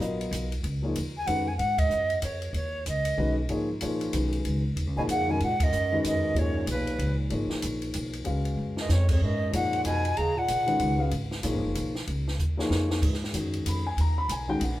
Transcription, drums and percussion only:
0.01 hi-hat pedal medium
0.21 ride soft
0.32 hi-hat pedal medium
0.32 ride medium
0.52 ride soft
0.64 ride medium
0.96 hi-hat pedal medium
0.96 ride medium
1.27 ride medium
1.59 ride soft
1.78 kick medium
1.78 ride medium
1.91 hi-hat pedal soft
2.10 ride soft
2.22 hi-hat pedal medium
2.22 ride medium
2.42 ride soft
2.54 ride soft
2.86 hi-hat pedal medium
2.86 ride medium
3.05 ride medium
3.49 ride soft
3.81 hi-hat pedal medium
3.81 ride medium
4.01 ride soft
4.13 hi-hat pedal medium
4.13 ride medium
4.33 ride soft
4.45 ride medium
4.77 ride soft
5.09 hi-hat pedal medium
5.09 ride medium
5.40 ride soft
5.60 kick medium
5.60 ride medium
5.73 hi-hat pedal medium
6.04 hi-hat pedal medium
6.04 ride medium
6.36 ride soft
6.67 hi-hat pedal soft
6.67 ride medium
6.87 ride soft
6.99 ride medium
7.30 ride soft
7.50 snare soft
7.62 hi-hat pedal medium
7.62 ride medium
7.82 ride soft
7.94 hi-hat pedal medium
7.94 ride medium
8.13 ride soft
8.25 ride soft
8.45 ride soft
8.77 snare medium
8.89 snare medium
8.89 hi-hat pedal medium
9.09 kick medium
9.09 crash medium
9.53 hi-hat pedal medium
9.53 ride medium
9.73 ride soft
9.85 hi-hat pedal medium
9.85 ride medium
10.05 ride soft
10.17 ride soft
10.48 hi-hat pedal medium
10.48 ride medium
10.68 ride soft
10.80 ride medium
11.11 ride medium
11.31 snare soft
11.43 hi-hat pedal medium
11.43 ride medium
11.75 hi-hat pedal medium
11.75 ride medium
11.95 snare soft
12.07 ride soft
12.28 snare soft
12.39 hi-hat pedal medium
12.59 snare medium
12.71 snare medium
12.91 snare medium
13.02 kick medium
13.02 crash medium
13.13 snare soft
13.24 snare soft
13.34 hi-hat pedal soft
13.34 ride medium
13.53 ride soft
13.66 hi-hat pedal medium
13.66 ride medium
13.98 ride medium
14.29 hi-hat pedal medium
14.29 ride medium
14.61 ride medium

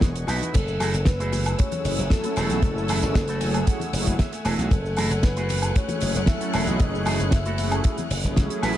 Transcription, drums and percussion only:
0.01 kick loud
0.01 snare loud
0.01 closed hi-hat medium
0.01 high conga medium
0.01 cabasa medium
0.15 closed hi-hat medium
0.15 cabasa soft
0.27 open hi-hat medium
0.27 high bongo medium
0.27 cabasa medium
0.27 high woodblock medium
0.42 closed hi-hat medium
0.42 high conga medium
0.42 cabasa soft
0.54 kick loud
0.54 closed hi-hat medium
0.54 crash medium
0.54 ride medium
0.54 low conga loud
0.54 cabasa medium
0.68 cabasa medium
0.80 open hi-hat loud
0.80 ride medium
0.80 high bongo medium
0.80 high conga medium
0.80 cabasa medium
0.80 high woodblock medium
0.94 closed hi-hat soft
0.94 cabasa medium
1.05 kick loud
1.05 snare loud
1.05 closed hi-hat medium
1.05 ride medium
1.05 cabasa medium
1.20 closed hi-hat medium
1.20 cabasa soft
1.32 open hi-hat loud
1.32 ride medium
1.32 high bongo medium
1.32 high conga medium
1.32 cabasa medium
1.46 closed hi-hat medium
1.46 cabasa soft
1.46 high woodblock medium
1.59 kick loud
1.59 closed hi-hat medium
1.59 ride medium
1.59 cabasa medium
1.72 closed hi-hat medium
1.72 high bongo medium
1.72 high conga loud
1.72 cabasa soft
1.84 open hi-hat loud
1.84 ride medium
1.84 low conga medium
1.84 cabasa medium
1.99 closed hi-hat medium
1.99 cabasa soft
2.10 kick loud
2.10 snare loud
2.10 closed hi-hat medium
2.10 ride medium
2.10 high conga medium
2.10 cabasa medium
2.24 closed hi-hat medium
2.24 high bongo medium
2.24 cabasa medium
2.36 open hi-hat medium
2.36 ride medium
2.36 cabasa medium
2.36 high woodblock medium
2.50 closed hi-hat medium
2.50 high conga medium
2.50 cabasa medium
2.62 kick loud
2.62 closed hi-hat medium
2.62 ride medium
2.62 high bongo medium
2.62 low conga loud
2.62 cabasa medium
2.78 cabasa medium
2.88 open hi-hat loud
2.88 ride medium
2.88 high conga medium
2.88 cabasa medium
2.88 high woodblock medium
3.03 closed hi-hat soft
3.03 cabasa medium
3.14 kick loud
3.14 snare loud
3.14 closed hi-hat medium
3.14 ride medium
3.14 high bongo medium
3.14 cabasa medium
3.28 closed hi-hat medium
3.28 cabasa soft
3.41 open hi-hat medium
3.41 ride medium
3.41 high conga medium
3.41 cabasa medium
3.54 closed hi-hat medium
3.54 high bongo soft
3.54 cabasa medium
3.54 high woodblock medium
3.67 kick loud
3.67 closed hi-hat medium
3.67 ride medium
3.67 cabasa medium
3.80 closed hi-hat medium
3.80 high conga loud
3.80 cabasa medium
3.93 open hi-hat loud
3.93 ride medium
3.93 low conga medium
3.93 cabasa medium
4.07 kick medium
4.07 closed hi-hat medium
4.07 high bongo medium
4.07 cabasa medium
4.19 kick loud
4.19 snare loud
4.19 closed hi-hat medium
4.19 ride medium
4.19 high conga medium
4.19 cabasa medium
4.33 closed hi-hat medium
4.33 cabasa medium
4.45 open hi-hat loud
4.45 ride medium
4.45 high bongo soft
4.45 cabasa medium
4.45 high woodblock medium
4.59 closed hi-hat medium
4.59 high conga medium
4.59 cabasa soft
4.71 kick loud
4.71 closed hi-hat medium
4.71 ride medium
4.71 low conga medium
4.71 cabasa medium
4.86 cabasa medium
4.96 open hi-hat loud
4.96 ride medium
4.96 high bongo medium
4.96 high conga medium
4.96 cabasa medium
4.96 high woodblock medium
5.11 closed hi-hat soft
5.11 cabasa medium
5.23 kick loud
5.23 snare loud
5.23 closed hi-hat medium
5.23 ride medium
5.23 cabasa medium
5.37 closed hi-hat medium
5.37 high bongo medium
5.37 cabasa medium
5.49 open hi-hat loud
5.49 ride medium
5.49 high conga medium
5.49 cabasa medium
5.62 closed hi-hat medium
5.62 cabasa soft
5.62 high woodblock medium
5.76 kick loud
5.76 closed hi-hat medium
5.76 ride medium
5.76 cabasa medium
5.89 closed hi-hat medium
5.89 high bongo medium
5.89 high conga loud
5.89 cabasa medium
6.00 open hi-hat loud
6.00 ride medium
6.00 low conga medium
6.00 cabasa medium
6.15 closed hi-hat medium
6.15 cabasa medium
6.26 kick loud
6.26 snare loud
6.26 closed hi-hat medium
6.26 ride medium
6.26 high bongo soft
6.26 high conga medium
6.26 cabasa soft
6.41 closed hi-hat medium
6.41 cabasa soft
6.53 open hi-hat loud
6.53 ride medium
6.53 cabasa medium
6.53 high woodblock medium
6.67 closed hi-hat soft
6.67 high conga loud
6.67 cabasa medium
6.79 kick loud
6.79 closed hi-hat medium
6.79 ride medium
6.79 high bongo medium
6.79 low conga medium
6.79 cabasa medium
6.95 cabasa medium
7.05 open hi-hat loud
7.05 ride medium
7.05 high conga loud
7.05 cabasa medium
7.05 high woodblock medium
7.20 closed hi-hat medium
7.20 high bongo medium
7.20 cabasa medium
7.31 kick loud
7.31 snare loud
7.31 closed hi-hat medium
7.31 ride medium
7.31 cabasa medium
7.45 closed hi-hat soft
7.45 cabasa medium
7.58 open hi-hat medium
7.58 ride medium
7.58 high conga medium
7.58 cabasa medium
7.72 closed hi-hat medium
7.72 high bongo medium
7.72 cabasa soft
7.72 high woodblock medium
7.84 kick loud
7.84 closed hi-hat medium
7.84 ride medium
7.84 cabasa medium
7.98 closed hi-hat medium
7.98 high conga loud
7.98 cabasa soft
8.10 open hi-hat loud
8.10 ride medium
8.10 high bongo soft
8.10 low conga medium
8.10 cabasa medium
8.24 kick medium
8.24 closed hi-hat medium
8.24 cabasa medium
8.36 kick loud
8.36 snare loud
8.36 closed hi-hat medium
8.36 ride medium
8.36 high conga medium
8.36 cabasa medium
8.50 closed hi-hat medium
8.50 cabasa medium
8.63 open hi-hat medium
8.63 ride medium
8.63 high bongo medium
8.63 cabasa medium
8.63 high woodblock medium

